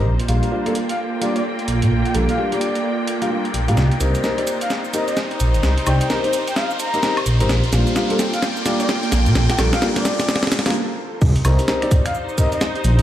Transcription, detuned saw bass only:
X:1
M:4/4
L:1/16
Q:"Swing 16ths" 1/4=129
K:Cdor
V:1 name="Detuned saw bass" clef=bass
B,,, z B,,, z8 z3 B,,, B,, | B,,, z B,,, z8 z3 B,,, B,, | C,, z C,, z8 z3 B,,, G,,, | C,, z C,, z8 z3 B,,, G,,, |
B,,, z B,,, z8 z3 B,,, B,, | B,,, z B,,, z12 z | C,, z C,, z8 z3 B,,, G,,, |]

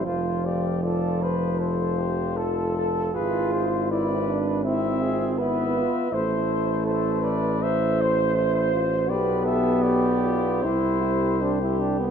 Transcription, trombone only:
X:1
M:4/4
L:1/16
Q:1/4=79
K:Am
V:1 name="Trombone"
F,12- F,2 z2 | F4 E C D2 C4 B,4 | A,12- A,2 z2 | B,8 E4 D E D B, |]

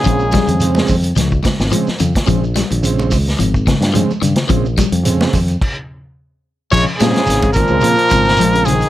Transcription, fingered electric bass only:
X:1
M:4/4
L:1/16
Q:"Swing 16ths" 1/4=108
K:Bbdor
V:1 name="Fingered electric bass" clef=bass
B,,,3 F,,3 F,,2 D,,2 z A,,, z2 F,, z | B,,,3 B,,,3 D,,2 A,,,3 G,,2 z G,, z | B,,,3 F,,3 F,,2 z8 | B,,, z B,, z A,,,3 D,, B,, z A,,,2 B,,,4 |]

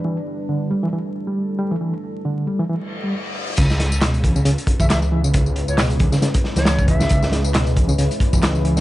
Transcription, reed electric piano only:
X:1
M:4/4
L:1/16
Q:"Swing 16ths" 1/4=136
K:Elyd
V:1 name="Reed electric piano" clef=bass
E, z3 =D,2 =G, E, E, z2 G,3 G, E, | E, z3 =D,2 =G, E, E, z2 G, z4 | C, z3 B,,2 E, C, C, z2 E,3 E, C, | C, z3 B,,2 E, C, C, z2 E,3 E, C, |
C, z3 B,,2 E, C, C, z2 E,3 E, C, |]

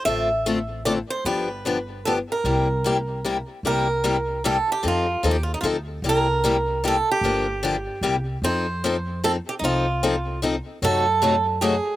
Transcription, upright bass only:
X:1
M:3/4
L:1/8
Q:"Swing" 1/4=150
K:Cmix
V:1 name="Upright bass" clef=bass
A,,,6 | G,,,6 | C,,6 | C,,6 |
F,,2 _E,,2 D,,2 | C,,6 | G,,,4 C,,2 | F,,6 |
C,,6 | ^F,,6 |]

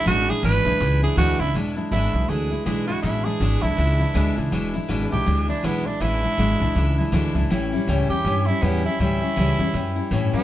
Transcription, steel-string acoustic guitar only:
X:1
M:4/4
L:1/8
Q:"Swing" 1/4=161
K:Emix
V:1 name="Steel-string acoustic guitar" clef=bass
[E,,B,,E,G,DE] [E,G,DE] [E,,B,,E,G,DE] [E,G,DE] [E,G,DE] [E,G,DE] [E,,B,,E,G,DE] [E,G,DE] | [E,,B,,E,G,DE] [E,G,DE] [E,,B,,E,G,DE] [E,G,DE] [E,G,DE] [E,G,DE] [E,,B,,E,G,DE] [E,G,DE] | [E,,B,,E,G,DE] [E,G,DE] [E,,B,,E,G,DE] [E,G,DE] [E,G,DE] [E,G,DE] [E,,B,,E,G,DE] [E,G,DE] | [E,,B,,E,G,DE] [E,G,DE] [E,,B,,E,G,DE] [E,G,DE] [E,G,DE] [E,G,DE] [E,,B,,E,G,DE] [E,G,DE] |
[E,,B,,E,G,DE] [E,G,DE] [E,,B,,E,G,DE] [E,G,DE] [E,G,DE] [E,G,DE] [E,,B,,E,G,DE] [E,G,DE] | [A,,E,=G,CE] [G,CE] [A,,E,G,CE] [G,CE] [E,G,CE] [G,CE] [A,,E,G,CE] [G,CE] | [A,,E,=G,CE] [G,CE] [A,,E,G,CE] [G,CE] [E,G,CE] [G,CE] [A,,E,G,CE] [G,CE] |]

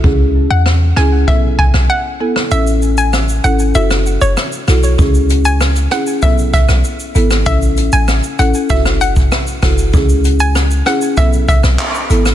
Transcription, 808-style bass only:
X:1
M:4/4
L:1/16
Q:1/4=97
K:C#m
V:1 name="808-style bass" clef=bass
C,,3 E,,3 C,,2 B,,,3 B,,, z4 | A,,,6 G,,,2 F,,,3 F,,, z2 B,,,2 | C,,6 z2 B,,,3 B,,, z2 G,,,2 | A,,,3 A,,,2 z A,,, z F,,,4 z2 F,,,2 |
C,,6 z2 B,,,3 B,,, z2 G,,,2 |]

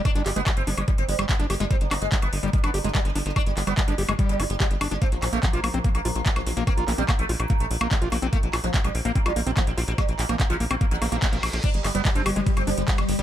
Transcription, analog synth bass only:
X:1
M:4/4
L:1/16
Q:1/4=145
K:none
V:1 name="Analog synth bass" clef=bass
z G,,, G,,, G,,, z G,,, G,,, G,,, z G,,, G,,, G,,, z G,,, G,,, G,,, | z G,,, G,,, G,,, z G,,, G,,, G,,, z G,,, G,,, G,,, z G,,, G,,, G,,, | z G,,, G,,, G,,, z G,,, G,,, G,,, z G,,, G,,, G,,, z G,,, G,,, G,,, | z _B,,, B,,, B,,, z B,,, B,,, B,,, z B,,, B,,, B,,, z B,,, B,,, B,,, |
z _B,,, B,,, B,,, z B,,, B,,, B,,, z B,,, B,,, B,,, z B,,, B,,, B,,, | z _B,,, B,,, B,,, z B,,, B,,, B,,, z B,,, B,,, B,,, z B,,, B,,, B,,, | z _B,,, B,,, B,,, z B,,, B,,, B,,, z B,,, B,,, B,,, z B,,, B,,, B,,, | z G,,, G,,, G,,, z G,,, G,,, G,,, z G,,, G,,, G,,, z G,,, G,,, G,,, |]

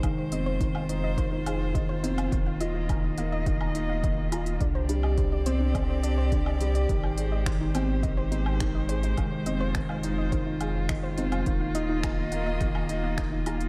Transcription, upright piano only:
X:1
M:4/4
L:1/8
Q:1/4=105
K:Fdor
V:1 name="Upright piano" clef=bass
E, C E, E E, A, E, C | E, F E, B, E, E E, F | D, G, D, C D, D D, G, | E, A, E, C E, C E, A, |
E, C E, E E, A, E, C | E, E E, B, E, E E, F |]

